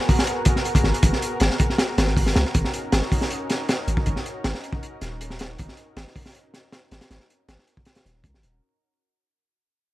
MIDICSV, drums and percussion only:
0, 0, Header, 1, 2, 480
1, 0, Start_track
1, 0, Tempo, 379747
1, 1301, Time_signature, 4, 2, 24, 8
1, 12562, End_track
2, 0, Start_track
2, 0, Title_t, "Drums"
2, 112, Note_on_c, 9, 46, 77
2, 113, Note_on_c, 9, 36, 83
2, 237, Note_on_c, 9, 38, 53
2, 238, Note_off_c, 9, 46, 0
2, 240, Note_off_c, 9, 36, 0
2, 342, Note_on_c, 9, 42, 79
2, 364, Note_off_c, 9, 38, 0
2, 468, Note_off_c, 9, 42, 0
2, 570, Note_on_c, 9, 42, 71
2, 582, Note_on_c, 9, 36, 93
2, 696, Note_off_c, 9, 42, 0
2, 708, Note_off_c, 9, 36, 0
2, 709, Note_on_c, 9, 38, 34
2, 824, Note_on_c, 9, 42, 55
2, 836, Note_off_c, 9, 38, 0
2, 946, Note_on_c, 9, 36, 85
2, 951, Note_off_c, 9, 42, 0
2, 954, Note_on_c, 9, 42, 76
2, 1057, Note_on_c, 9, 38, 35
2, 1073, Note_off_c, 9, 36, 0
2, 1080, Note_off_c, 9, 42, 0
2, 1184, Note_off_c, 9, 38, 0
2, 1190, Note_on_c, 9, 42, 53
2, 1297, Note_off_c, 9, 42, 0
2, 1297, Note_on_c, 9, 42, 89
2, 1301, Note_on_c, 9, 36, 95
2, 1423, Note_off_c, 9, 42, 0
2, 1425, Note_on_c, 9, 38, 39
2, 1427, Note_off_c, 9, 36, 0
2, 1545, Note_on_c, 9, 42, 69
2, 1552, Note_off_c, 9, 38, 0
2, 1672, Note_off_c, 9, 42, 0
2, 1769, Note_on_c, 9, 42, 72
2, 1787, Note_on_c, 9, 38, 98
2, 1895, Note_off_c, 9, 42, 0
2, 1899, Note_off_c, 9, 38, 0
2, 1899, Note_on_c, 9, 38, 51
2, 2016, Note_on_c, 9, 42, 71
2, 2020, Note_on_c, 9, 36, 94
2, 2025, Note_off_c, 9, 38, 0
2, 2143, Note_off_c, 9, 42, 0
2, 2145, Note_on_c, 9, 38, 37
2, 2146, Note_off_c, 9, 36, 0
2, 2255, Note_off_c, 9, 38, 0
2, 2255, Note_on_c, 9, 38, 99
2, 2262, Note_on_c, 9, 42, 67
2, 2382, Note_off_c, 9, 38, 0
2, 2388, Note_off_c, 9, 42, 0
2, 2503, Note_on_c, 9, 42, 77
2, 2507, Note_on_c, 9, 38, 98
2, 2623, Note_off_c, 9, 38, 0
2, 2623, Note_on_c, 9, 38, 39
2, 2629, Note_off_c, 9, 42, 0
2, 2738, Note_on_c, 9, 36, 83
2, 2745, Note_on_c, 9, 46, 64
2, 2750, Note_off_c, 9, 38, 0
2, 2862, Note_on_c, 9, 38, 49
2, 2864, Note_off_c, 9, 36, 0
2, 2871, Note_off_c, 9, 46, 0
2, 2978, Note_off_c, 9, 38, 0
2, 2978, Note_on_c, 9, 38, 99
2, 2986, Note_on_c, 9, 42, 76
2, 3099, Note_off_c, 9, 38, 0
2, 3099, Note_on_c, 9, 38, 36
2, 3112, Note_off_c, 9, 42, 0
2, 3216, Note_on_c, 9, 42, 88
2, 3221, Note_on_c, 9, 36, 99
2, 3226, Note_off_c, 9, 38, 0
2, 3342, Note_off_c, 9, 42, 0
2, 3343, Note_on_c, 9, 38, 41
2, 3347, Note_off_c, 9, 36, 0
2, 3457, Note_on_c, 9, 42, 69
2, 3470, Note_off_c, 9, 38, 0
2, 3584, Note_off_c, 9, 42, 0
2, 3695, Note_on_c, 9, 42, 81
2, 3697, Note_on_c, 9, 38, 109
2, 3818, Note_off_c, 9, 38, 0
2, 3818, Note_on_c, 9, 38, 41
2, 3821, Note_off_c, 9, 42, 0
2, 3939, Note_on_c, 9, 36, 93
2, 3945, Note_off_c, 9, 38, 0
2, 3945, Note_on_c, 9, 46, 68
2, 4062, Note_on_c, 9, 38, 52
2, 4066, Note_off_c, 9, 36, 0
2, 4071, Note_off_c, 9, 46, 0
2, 4178, Note_on_c, 9, 42, 77
2, 4188, Note_off_c, 9, 38, 0
2, 4304, Note_off_c, 9, 42, 0
2, 4419, Note_on_c, 9, 42, 72
2, 4430, Note_on_c, 9, 38, 50
2, 4545, Note_off_c, 9, 42, 0
2, 4556, Note_off_c, 9, 38, 0
2, 4659, Note_on_c, 9, 42, 73
2, 4666, Note_on_c, 9, 38, 102
2, 4786, Note_off_c, 9, 42, 0
2, 4793, Note_off_c, 9, 38, 0
2, 4902, Note_on_c, 9, 42, 66
2, 5019, Note_on_c, 9, 36, 96
2, 5028, Note_off_c, 9, 42, 0
2, 5131, Note_on_c, 9, 42, 74
2, 5143, Note_off_c, 9, 36, 0
2, 5143, Note_on_c, 9, 36, 92
2, 5257, Note_off_c, 9, 42, 0
2, 5261, Note_on_c, 9, 38, 45
2, 5270, Note_off_c, 9, 36, 0
2, 5382, Note_on_c, 9, 42, 68
2, 5387, Note_off_c, 9, 38, 0
2, 5508, Note_off_c, 9, 42, 0
2, 5615, Note_on_c, 9, 38, 111
2, 5616, Note_on_c, 9, 42, 86
2, 5742, Note_off_c, 9, 38, 0
2, 5742, Note_off_c, 9, 42, 0
2, 5744, Note_on_c, 9, 38, 57
2, 5859, Note_on_c, 9, 42, 70
2, 5870, Note_off_c, 9, 38, 0
2, 5972, Note_on_c, 9, 36, 94
2, 5986, Note_off_c, 9, 42, 0
2, 6099, Note_off_c, 9, 36, 0
2, 6103, Note_on_c, 9, 42, 73
2, 6229, Note_off_c, 9, 42, 0
2, 6337, Note_on_c, 9, 42, 61
2, 6341, Note_on_c, 9, 38, 34
2, 6463, Note_off_c, 9, 42, 0
2, 6467, Note_off_c, 9, 38, 0
2, 6583, Note_on_c, 9, 42, 77
2, 6704, Note_on_c, 9, 38, 39
2, 6709, Note_off_c, 9, 42, 0
2, 6813, Note_on_c, 9, 42, 65
2, 6830, Note_off_c, 9, 38, 0
2, 6838, Note_on_c, 9, 38, 113
2, 6939, Note_off_c, 9, 42, 0
2, 6965, Note_off_c, 9, 38, 0
2, 7059, Note_on_c, 9, 42, 76
2, 7072, Note_on_c, 9, 36, 91
2, 7186, Note_off_c, 9, 42, 0
2, 7186, Note_on_c, 9, 38, 42
2, 7198, Note_off_c, 9, 36, 0
2, 7295, Note_on_c, 9, 42, 57
2, 7312, Note_off_c, 9, 38, 0
2, 7421, Note_off_c, 9, 42, 0
2, 7541, Note_on_c, 9, 42, 78
2, 7545, Note_on_c, 9, 38, 111
2, 7667, Note_off_c, 9, 42, 0
2, 7671, Note_off_c, 9, 38, 0
2, 7678, Note_on_c, 9, 38, 43
2, 7781, Note_on_c, 9, 36, 87
2, 7784, Note_on_c, 9, 46, 73
2, 7805, Note_off_c, 9, 38, 0
2, 7908, Note_off_c, 9, 36, 0
2, 7908, Note_on_c, 9, 38, 53
2, 7910, Note_off_c, 9, 46, 0
2, 8022, Note_on_c, 9, 42, 83
2, 8034, Note_off_c, 9, 38, 0
2, 8149, Note_off_c, 9, 42, 0
2, 8262, Note_on_c, 9, 38, 51
2, 8271, Note_on_c, 9, 42, 66
2, 8388, Note_off_c, 9, 38, 0
2, 8397, Note_off_c, 9, 42, 0
2, 8499, Note_on_c, 9, 38, 103
2, 8504, Note_on_c, 9, 42, 71
2, 8625, Note_off_c, 9, 38, 0
2, 8631, Note_off_c, 9, 42, 0
2, 8739, Note_on_c, 9, 42, 72
2, 8748, Note_on_c, 9, 38, 93
2, 8861, Note_off_c, 9, 42, 0
2, 8861, Note_on_c, 9, 42, 77
2, 8864, Note_off_c, 9, 38, 0
2, 8864, Note_on_c, 9, 38, 91
2, 8982, Note_off_c, 9, 38, 0
2, 8982, Note_off_c, 9, 42, 0
2, 8982, Note_on_c, 9, 38, 88
2, 8982, Note_on_c, 9, 42, 68
2, 9100, Note_off_c, 9, 38, 0
2, 9100, Note_on_c, 9, 38, 41
2, 9109, Note_off_c, 9, 42, 0
2, 9227, Note_off_c, 9, 38, 0
2, 9229, Note_on_c, 9, 42, 62
2, 9356, Note_off_c, 9, 42, 0
2, 9462, Note_on_c, 9, 42, 79
2, 9463, Note_on_c, 9, 38, 106
2, 9588, Note_off_c, 9, 42, 0
2, 9590, Note_off_c, 9, 38, 0
2, 9591, Note_on_c, 9, 38, 47
2, 9700, Note_on_c, 9, 42, 62
2, 9718, Note_off_c, 9, 38, 0
2, 9823, Note_on_c, 9, 36, 89
2, 9826, Note_off_c, 9, 42, 0
2, 9926, Note_on_c, 9, 42, 67
2, 9941, Note_on_c, 9, 38, 88
2, 9949, Note_off_c, 9, 36, 0
2, 10051, Note_off_c, 9, 42, 0
2, 10051, Note_on_c, 9, 42, 68
2, 10065, Note_off_c, 9, 38, 0
2, 10065, Note_on_c, 9, 38, 97
2, 10178, Note_off_c, 9, 42, 0
2, 10184, Note_off_c, 9, 38, 0
2, 10184, Note_on_c, 9, 38, 34
2, 10188, Note_on_c, 9, 42, 59
2, 10310, Note_off_c, 9, 38, 0
2, 10314, Note_off_c, 9, 42, 0
2, 10412, Note_on_c, 9, 36, 93
2, 10420, Note_on_c, 9, 42, 74
2, 10538, Note_off_c, 9, 36, 0
2, 10545, Note_on_c, 9, 38, 35
2, 10546, Note_off_c, 9, 42, 0
2, 10657, Note_on_c, 9, 42, 59
2, 10672, Note_off_c, 9, 38, 0
2, 10784, Note_off_c, 9, 42, 0
2, 12562, End_track
0, 0, End_of_file